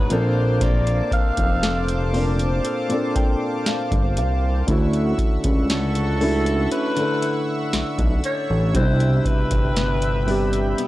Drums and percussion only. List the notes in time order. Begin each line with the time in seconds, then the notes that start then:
0.10 closed hi-hat
0.61 kick, closed hi-hat
0.87 closed hi-hat
1.12 kick, closed hi-hat
1.37 kick, closed hi-hat
1.63 snare, closed hi-hat
1.88 closed hi-hat
2.14 open hi-hat
2.39 closed hi-hat
2.65 closed hi-hat
2.90 closed hi-hat
3.16 kick, closed hi-hat
3.66 snare, closed hi-hat
3.92 kick, closed hi-hat
4.17 closed hi-hat
4.68 kick, closed hi-hat
4.93 closed hi-hat
5.18 kick, closed hi-hat
5.44 kick, closed hi-hat
5.70 snare, closed hi-hat
5.95 closed hi-hat
6.21 open hi-hat
6.46 closed hi-hat
6.71 closed hi-hat
6.97 closed hi-hat
7.22 closed hi-hat
7.73 snare, closed hi-hat
7.98 kick, closed hi-hat
8.24 closed hi-hat
8.75 kick, closed hi-hat
9.00 closed hi-hat
9.25 kick, closed hi-hat
9.51 kick, closed hi-hat
9.76 snare, closed hi-hat
10.02 closed hi-hat
10.28 open hi-hat
10.53 closed hi-hat
10.78 closed hi-hat